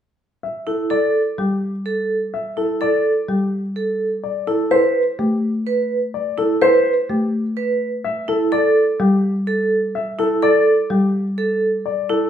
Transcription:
0.43 E5
0.67 E4 A4
0.90 A4 D5
1.38 G3 G4
1.86 A4
2.34 E5
2.57 E4 A4
2.81 A4 D5
3.29 G3 G4
3.76 A4
4.24 D5
4.47 E4 A4
4.71 B4 C5
5.19 A3 G4
5.67 B4
6.14 D5
6.38 E4 A4
6.62 B4 C5
7.09 A3 G4
7.57 B4
8.04 E5
8.28 E4 A4
8.52 A4 D5
9.00 G3 G4
9.47 A4
9.95 E5
10.19 E4 A4
10.42 A4 D5
10.90 G3 G4
11.38 A4
11.86 D5
12.09 E4 A4

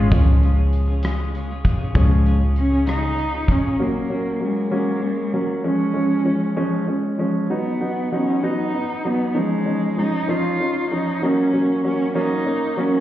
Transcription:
Already playing: C#4 F4 G#4
0.11 C#2 C#3 F3 G#3 C#4 F4 G#4, kick, closed hi-hat
0.42 G#3 C#4 F4 G#4, closed hi-hat
0.57 C#4 F4 G#4
0.73 closed hi-hat
0.88 C#4 F4 G#4
1.03 C#3 G#3 C#4 F4 G#4, cross-stick, closed hi-hat
1.34 G#3 C#4 F4 G#4, closed hi-hat
1.49 C#4 F4 G#4
1.65 kick, closed hi-hat
1.79 C#4 F4 G#4
1.94 C#2 C#3 F3 G#3 C#4 F4 G#4, kick, closed hi-hat
2.25 G#3 C#4 F4 G#4, closed hi-hat
2.40 C#4 F4 G#4
2.56 C#4, closed hi-hat
2.70 C#4 F4 G#4
2.86 C#3 G#3 C#4 D#4 F4 G#4, cross-stick, closed hi-hat
3.17 G#3 C#4 F4 G#4, closed hi-hat
3.32 C#4 F4 G#4
3.48 C#4, kick, closed hi-hat
3.63 C#4 F4 G#4
3.79 F#3 A#3 C#4
4.09 F#3 A#3 C#4
4.40 F#3 G#3 A#3 C#4
4.71 F#3 A#3 C#4
5.02 A#3 C#4
5.33 F#3 A#3 C#4
5.64 F3 G#3 C#4
5.94 F3 G#3 C#4
6.25 F3 G#3 C#4
6.56 F3 G#3 C#4
6.87 G#3 C#4
7.18 F3 G#3 C#4
7.50 F#3 B3 D#4
7.80 F#3 B3 D#4
8.12 F#3 B3 C#4 D#4
8.43 F#3 B3 D#4
8.74 B3 D#4
9.05 F#3 B3 D#4
9.35 F3 G#3 C#4 D#4
9.66 F3 C#4 D#4
9.97 F3 C#4 D#4
10.28 F3 C#4 D#4 F4
10.60 C#4 D#4
10.91 F3 C#4 D#4
11.22 F#3 A#3 C#4
11.53 F#3 A#3 C#4
11.84 F#3 A#3 C#4
12.15 F#3 A#3 C#4 D#4
12.46 A#3 C#4
12.77 F#3 A#3 C#4

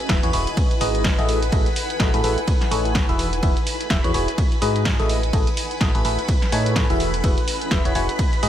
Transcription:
Already playing: B4 D#5 F#5 G#5 B5
0.09 E1 E3 E4 F#4 G#4 B4 E5, kick, snare, ride
0.23 E2 E3 E4 F#4 G#4 B4 C#5, closed hi-hat
0.33 E1 E4 F#4 G#4 B4 C#5, open hi-hat
0.47 closed hi-hat
0.57 kick, ride
0.71 closed hi-hat
0.81 G#1 G#3 D#4 F#4 G#4 B4 D#5, open hi-hat
0.95 closed hi-hat
1.04 kick, snare, ride
1.18 A1 A3 E4 F#4 G#4 A4 D#5, closed hi-hat
1.29 open hi-hat
1.42 closed hi-hat
1.52 A1 A3 E4 F#4 G#4 A4 D#5, kick, ride
1.66 closed hi-hat
1.76 open hi-hat
1.90 closed hi-hat
2.00 A1 A3 E4 F#4 G#4 A4 D#5, kick, snare, ride
2.14 A2 A3 E4 F#4 G#4 A4 B4, closed hi-hat
2.24 A1 A3 E4 F#4 G#4 A4 B4, open hi-hat
2.38 closed hi-hat
2.48 kick, ride
2.61 snare, closed hi-hat
2.71 A1 A3 D#4 G#4 A4 B4 C#5, open hi-hat
2.85 closed hi-hat
2.95 kick, snare, ride
3.09 E1 E3 E4 F#4 G#4 B4 E5, closed hi-hat
3.19 open hi-hat
3.33 closed hi-hat
3.43 E1 E3 E4 F#4 G#4 B4 E5, kick, ride
3.54 F#5, closed hi-hat
3.67 open hi-hat
3.81 closed hi-hat
3.90 E1 E3 E4 F#4 G#4 B4 E5, kick, snare, ride
4.04 E2 E3 E4 F#4 G#4 B4 C#5, closed hi-hat
4.14 E1 E4 F#4 G#4 B4 C#5, open hi-hat
4.28 closed hi-hat
4.38 B4 B5, kick, ride
4.52 closed hi-hat
4.62 G#2 G#3 D#4 F#4 G#4 B4 D#5, open hi-hat
4.76 closed hi-hat
4.85 kick, snare, ride
4.99 A1 A3 E4 F#4 G#4 A4 D#5, closed hi-hat
5.09 open hi-hat
5.23 closed hi-hat
5.33 A1 A3 E4 F#4 G#4 A4 D#5, kick, ride
5.47 closed hi-hat
5.57 open hi-hat
5.71 closed hi-hat
5.81 A1 A3 E4 F#4 G#4 A4 D#5, kick, snare, ride
5.95 A1 A3 E4 F#4 G#4 A4 B4, closed hi-hat
6.05 A1 A3 E4 F#4 G#4 A4 B4, open hi-hat
6.19 closed hi-hat
6.28 kick, ride
6.42 snare, closed hi-hat
6.52 A2 A3 D#4 G#4 A4 B4 C#5, open hi-hat
6.62 D#5
6.66 closed hi-hat
6.76 kick, snare, ride
6.90 E1 E3 E4 F#4 G#4 B4 E5, closed hi-hat
7.00 open hi-hat
7.14 closed hi-hat
7.24 E1 E3 E4 F#4 G#4 B4 E5, kick, ride
7.38 closed hi-hat
7.48 open hi-hat
7.54 F#5
7.61 closed hi-hat
7.71 E1 E3 E4 F#4 G#4 B4 E5, kick, snare, ride
7.85 E1 E3 E4 F#4 G#4 B4 C#5, closed hi-hat
7.95 E1 E4 F#4 G#4 B4 C#5, open hi-hat
8.09 closed hi-hat
8.19 kick, ride
8.33 closed hi-hat
8.43 G#2 G#3 D#4 F#4 G#4 B4 D#5, open hi-hat

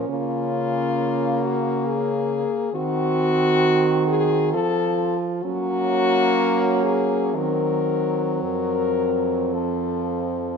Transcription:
Already playing: C#4
0.08 C#3 A#3 F4
1.42 F#4
1.86 G#4
2.73 D#3 C4 F#4
4.07 G#4
4.53 F3 F4 A4
5.42 F#3 A#3 C#4 F#4
6.83 G#4
7.35 D#3 F#3 C4 A#4
8.42 F2 A#4
9.52 F3 A4

